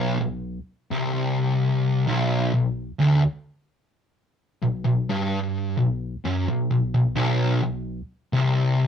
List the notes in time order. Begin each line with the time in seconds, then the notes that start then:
Already playing: B1
0.21 B1
0.91 C2
2.07 B1
2.54 B1
3.00 D2
4.62 B1
4.84 B1
5.09 G2
5.77 B1
6.25 F#2
6.48 B1
6.71 B1
6.94 B1
7.16 B1
7.63 B1
8.33 C2